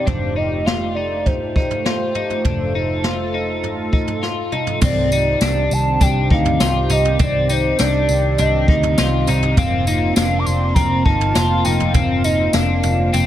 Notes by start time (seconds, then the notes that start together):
Already playing: G4
0.07 F1 A3 D4 F4 C5, kick, floor tom
0.36 D#4 D#5
0.66 F4 F5, snare
0.95 D#4 D5
1.26 C5, kick, floor tom
1.56 D#4, kick
1.70 floor tom
1.85 F4, snare
2.15 D#4, floor tom
2.30 floor tom
2.45 F1 D4 A4, kick, floor tom
2.75 D#4
3.04 F4, snare
3.34 D#4
3.63 floor tom
3.93 D#4, kick
4.07 floor tom
4.23 F4, snare
4.52 D#4, mid tom
4.67 floor tom
4.82 C2 C3 D#3 C4 G4 D5, kick, floor tom, crash, tambourine
5.12 D#4, tambourine
5.41 C2 D4, snare, tambourine
5.71 C2 A5, tambourine
6.01 C2 D4 G5, kick, floor tom, tambourine
6.30 D2 D#4 F5, kick
6.45 floor tom
6.60 C2 F4, snare, tambourine
6.90 C2 D#4 D#5, floor tom, tambourine
7.05 floor tom
7.19 C2 C4 D5, kick, floor tom, tambourine
7.49 D#4 C5, tambourine
7.79 C2 D4 D5, snare, tambourine
8.09 C2, tambourine
8.38 C2 D4 D#5, floor tom, tambourine
8.68 D2 D#4, kick
8.83 floor tom
8.98 C2 F4, snare, tambourine
9.27 C2 D#4, floor tom, tambourine
9.42 floor tom
9.57 F1 A#3 C4 F4 F5, kick, floor tom, tambourine
9.87 D#4, tambourine
10.16 F1 D4 F5, snare, tambourine
10.39 D6
10.46 F1 C6, tambourine
10.74 F1 C4 A#5, kick, floor tom, tambourine
11.04 G1 D#4 A5, kick
11.21 floor tom
11.35 F1 F4, snare, tambourine
11.64 F1 D#4 G5, floor tom, tambourine
11.80 floor tom
11.94 F1 C4 F5, kick, floor tom, tambourine
12.24 D#4 D#5, tambourine
12.53 F1 D4 F5, snare, tambourine
12.83 F1, floor tom, tambourine
13.13 F1 C4 G5, floor tom, tambourine